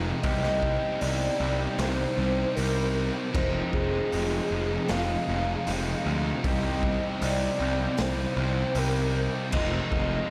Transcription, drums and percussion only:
0.23 kick, open hi-hat
0.44 snare
0.62 kick
1.01 open hi-hat
1.78 snare, open hi-hat
2.57 open hi-hat
3.35 kick, crash
3.73 kick
4.12 open hi-hat
4.88 snare, open hi-hat
5.67 open hi-hat
6.44 kick, open hi-hat
6.83 kick
7.22 open hi-hat
7.97 snare, open hi-hat
8.75 open hi-hat
9.52 kick, crash
9.92 kick

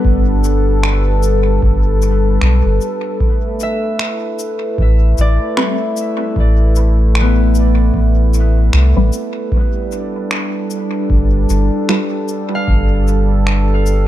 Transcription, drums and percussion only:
0.05 kick
0.44 cabasa
0.83 finger snap
1.23 cabasa
1.62 kick
2.02 cabasa
2.41 finger snap
2.81 cabasa
3.20 kick
3.60 cabasa
3.99 finger snap
4.39 cabasa
4.78 kick
5.18 cabasa
5.57 finger snap
5.97 cabasa
6.36 kick
6.76 cabasa
7.15 finger snap
7.55 cabasa
7.94 kick
8.34 cabasa
8.73 finger snap
9.13 cabasa
9.52 kick
9.92 cabasa
10.31 finger snap
10.70 cabasa
11.10 kick
11.49 cabasa
11.89 finger snap
12.28 cabasa
12.68 kick
13.07 cabasa
13.47 finger snap
13.86 cabasa

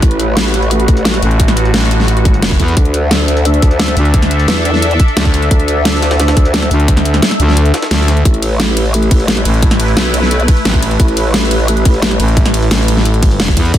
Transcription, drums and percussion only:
0.02 kick, closed hi-hat
0.11 closed hi-hat
0.20 closed hi-hat
0.37 snare, closed hi-hat
0.54 closed hi-hat
0.62 closed hi-hat
0.71 closed hi-hat
0.80 closed hi-hat
0.88 kick, closed hi-hat
0.97 closed hi-hat
1.05 snare, closed hi-hat
1.14 snare
1.22 snare, closed hi-hat
1.31 closed hi-hat
1.40 kick, closed hi-hat
1.48 snare, closed hi-hat
1.57 closed hi-hat
1.65 closed hi-hat
1.74 snare, closed hi-hat
1.83 closed hi-hat
1.91 closed hi-hat
2.00 snare
2.08 closed hi-hat
2.17 closed hi-hat
2.25 kick, closed hi-hat
2.34 closed hi-hat
2.42 snare, closed hi-hat
2.51 kick, snare
2.60 kick, closed hi-hat
2.68 closed hi-hat
2.77 kick, closed hi-hat
2.85 closed hi-hat
2.94 closed hi-hat
3.11 snare, closed hi-hat
3.28 closed hi-hat
3.37 closed hi-hat
3.45 closed hi-hat
3.54 closed hi-hat
3.62 kick, closed hi-hat
3.71 closed hi-hat
3.80 snare, closed hi-hat
3.88 snare
3.97 snare, closed hi-hat
4.05 closed hi-hat
4.14 kick, closed hi-hat
4.22 snare, closed hi-hat
4.31 closed hi-hat
4.39 closed hi-hat
4.48 snare, closed hi-hat
4.57 closed hi-hat
4.65 closed hi-hat
4.74 snare
4.82 closed hi-hat
4.91 closed hi-hat
5.00 kick, closed hi-hat
5.08 closed hi-hat
5.17 snare, closed hi-hat
5.25 kick, snare
5.34 closed hi-hat
5.42 closed hi-hat
5.51 kick, closed hi-hat
5.60 closed hi-hat
5.68 closed hi-hat
5.85 snare, closed hi-hat
6.02 snare, closed hi-hat
6.11 snare, closed hi-hat
6.20 snare, closed hi-hat
6.28 snare, closed hi-hat
6.37 kick, closed hi-hat
6.45 closed hi-hat
6.54 snare, closed hi-hat
6.62 snare
6.71 closed hi-hat
6.80 closed hi-hat
6.88 kick, closed hi-hat
6.97 snare, closed hi-hat
7.05 closed hi-hat
7.14 snare, closed hi-hat
7.22 snare, closed hi-hat
7.31 snare, closed hi-hat
7.40 closed hi-hat
7.48 snare
7.57 closed hi-hat
7.66 closed hi-hat
7.74 snare, closed hi-hat
7.83 snare, closed hi-hat
7.91 snare, closed hi-hat
8.00 snare
8.08 snare, closed hi-hat
8.17 closed hi-hat
8.25 kick, closed hi-hat
8.34 closed hi-hat
8.42 closed hi-hat, ride
8.60 snare, closed hi-hat
8.77 closed hi-hat, ride
8.85 closed hi-hat
8.94 closed hi-hat
9.03 closed hi-hat
9.11 kick, closed hi-hat, ride
9.20 closed hi-hat
9.28 snare, closed hi-hat
9.37 snare
9.45 snare, closed hi-hat, ride
9.54 closed hi-hat
9.62 kick, closed hi-hat
9.71 snare, closed hi-hat
9.80 closed hi-hat, ride
9.88 closed hi-hat
9.97 snare, closed hi-hat
10.05 closed hi-hat
10.14 closed hi-hat, ride
10.23 snare
10.31 closed hi-hat
10.40 closed hi-hat
10.48 kick, closed hi-hat, ride
10.57 closed hi-hat
10.65 snare, closed hi-hat
10.74 kick, snare
10.82 closed hi-hat, ride
10.91 closed hi-hat
11.00 kick, closed hi-hat
11.08 closed hi-hat
11.17 closed hi-hat, ride
11.34 snare, closed hi-hat
11.51 closed hi-hat, ride
11.60 closed hi-hat
11.68 closed hi-hat
11.77 closed hi-hat
11.85 kick, closed hi-hat, ride
11.94 closed hi-hat
12.02 snare, closed hi-hat
12.11 snare
12.20 snare, closed hi-hat, ride
12.28 closed hi-hat
12.37 kick, closed hi-hat
12.46 snare, closed hi-hat
12.54 closed hi-hat, ride
12.63 closed hi-hat
12.71 snare, closed hi-hat
12.80 closed hi-hat
12.88 closed hi-hat, ride
12.97 snare
13.05 closed hi-hat
13.14 closed hi-hat
13.23 kick, closed hi-hat, ride
13.31 closed hi-hat
13.40 snare, closed hi-hat
13.48 kick, snare
13.57 kick, closed hi-hat, ride
13.65 closed hi-hat
13.74 kick, closed hi-hat

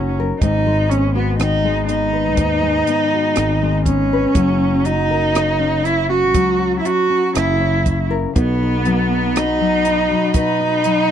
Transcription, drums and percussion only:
0.41 kick, closed hi-hat
0.91 closed hi-hat
1.40 cross-stick, closed hi-hat
1.89 closed hi-hat
2.37 kick, closed hi-hat
2.87 closed hi-hat
3.36 cross-stick, closed hi-hat
3.86 kick, closed hi-hat
4.35 kick, closed hi-hat
4.85 closed hi-hat
5.35 cross-stick, closed hi-hat
5.85 closed hi-hat
6.34 kick, closed hi-hat
6.85 closed hi-hat
7.35 cross-stick, closed hi-hat
7.86 kick, closed hi-hat
8.36 kick, closed hi-hat
8.85 closed hi-hat
9.36 cross-stick, closed hi-hat
9.85 closed hi-hat
10.34 kick, closed hi-hat
10.84 closed hi-hat

